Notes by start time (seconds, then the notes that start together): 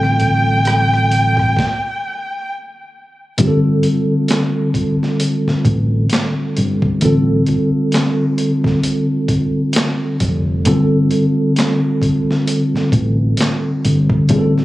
Already playing: A1 D3 G3 C4 F4 A4 G5
0.03 cross-stick
0.20 kick, closed hi-hat
0.65 cross-stick, closed hi-hat
0.94 cross-stick
1.11 closed hi-hat
1.37 kick, cross-stick
1.57 kick, snare
3.38 G1 D3 G3 C4 F4 G4, kick, closed hi-hat
3.48 A4
3.83 closed hi-hat
4.28 snare, clap, closed hi-hat
4.74 kick, closed hi-hat
5.03 snare
5.20 closed hi-hat
5.47 muted fingered electric bass stroke, snare
5.65 A1, kick, closed hi-hat
6.10 snare, closed hi-hat
6.14 clap
6.57 G1, closed hi-hat
6.82 kick
7.01 A1 D3 G3 C4 F4, kick, closed hi-hat
7.05 A4
7.46 kick, closed hi-hat
7.92 snare, clap, closed hi-hat
8.38 closed hi-hat
8.64 kick, snare
8.83 closed hi-hat
9.28 kick, closed hi-hat
9.73 snare, closed hi-hat
9.78 clap
10.20 F1, kick, closed hi-hat
10.65 G1 D3 G3 C4 F4 A4, kick, closed hi-hat
11.11 closed hi-hat
11.56 snare, clap, closed hi-hat
12.02 kick, closed hi-hat
12.31 snare
12.47 closed hi-hat
12.74 muted fingered electric bass stroke, snare
12.92 A1, kick, closed hi-hat
13.37 snare, closed hi-hat
13.42 clap
13.85 G1, closed hi-hat
14.10 kick
14.29 A1 D3 G3 C4 F4 G#4, kick, closed hi-hat
14.39 A4
14.58 snare